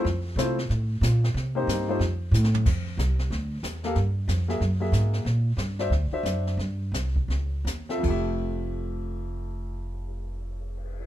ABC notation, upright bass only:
X:1
M:4/4
L:1/8
Q:"Swing" 1/4=184
K:F
V:1 name="Upright bass" clef=bass
F,,2 C,2 A,,2 B,,2 | C,2 G,,2 F,,2 A,,2 | F,,2 C,,2 D,,2 E,,2 | G,,2 F,,2 _G,,2 _A,,2 |
B,,2 G,,2 D,, z ^F,,2 | G,,2 C,,2 _D,,2 _E,,2 | F,,,8- | F,,,8 |]